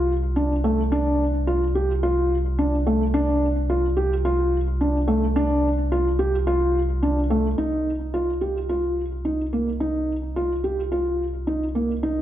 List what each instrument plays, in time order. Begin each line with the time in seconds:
Already playing: analog synth bass C2, felt piano F4
0.36 felt piano D4
0.64 felt piano A3
0.92 felt piano D4
1.47 felt piano F4
1.75 felt piano G4
2.03 felt piano F4
2.59 felt piano D4
2.87 felt piano A3
3.14 felt piano D4
3.70 felt piano F4
3.97 felt piano G4
4.25 felt piano F4
4.81 felt piano D4
5.08 felt piano A3
5.36 felt piano D4
5.92 felt piano F4
6.19 felt piano G4
6.47 felt piano F4
7.03 felt piano D4
7.30 felt piano A3
7.58 analog synth bass C2, felt piano D#4
8.14 felt piano F4
8.41 felt piano G4
8.69 felt piano F4
9.25 felt piano D#4
9.53 felt piano A#3
9.80 felt piano D#4
10.36 felt piano F4
10.64 felt piano G4
10.92 felt piano F4
11.47 felt piano D#4
11.75 felt piano A#3
12.03 felt piano D#4